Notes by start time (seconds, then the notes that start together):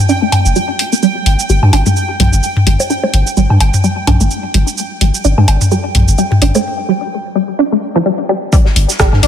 Already playing: G5
0.09 D4, cabasa
0.22 A3
0.32 mid tom, open hi-hat, low woodblock
0.46 F1, cabasa
0.56 G3, cabasa
0.79 open hi-hat
0.92 A#3, cabasa
1.03 G3, cabasa
1.26 G1, open hi-hat
1.39 cabasa
1.50 G1 G3, cabasa
1.63 G2, low woodblock
1.73 G1 D4, open hi-hat, low woodblock
1.86 A3, mid tom, cabasa
1.96 cabasa
2.20 A#1 G3, mid tom, open hi-hat
2.33 G1, cabasa
2.43 cabasa
2.57 mid tom
2.67 G1 G3, open hi-hat
2.80 high bongo, cabasa
2.90 D4, cabasa
3.03 A3, high bongo
3.14 G1, open hi-hat
3.27 cabasa
3.37 G1 G3, cabasa
3.50 G2, low woodblock
3.60 G1, open hi-hat, low woodblock
3.74 mid tom, cabasa
3.84 G3, cabasa
4.07 A#1 D4, mid tom, open hi-hat, low woodblock
4.21 G1 A3, cabasa
4.31 cabasa
4.54 G1 G3, open hi-hat
4.68 cabasa
4.78 cabasa
5.01 G1 G3, open hi-hat
5.14 cabasa
5.25 G1 D4, cabasa
5.38 G2 A3, low woodblock
5.48 G1, open hi-hat, low woodblock
5.61 mid tom, cabasa
5.71 G3, cabasa
5.95 A#1, mid tom, open hi-hat
6.08 G1, cabasa
6.18 G3, cabasa
6.32 mid tom
6.42 G1 D4, open hi-hat
6.55 A3, high bongo, cabasa
6.89 G3
7.35 G3
7.59 D4
7.72 A3
7.96 F3
8.06 G3
8.29 G3
8.53 G3, kick, closed hi-hat, cabasa
8.66 snare
8.76 G1, closed hi-hat, open hi-hat
8.89 snare, cabasa
8.99 G1 G3, kick, cross-stick, snare, closed hi-hat, cabasa
9.13 G2, snare, low woodblock
9.23 G1 D4, closed hi-hat, open hi-hat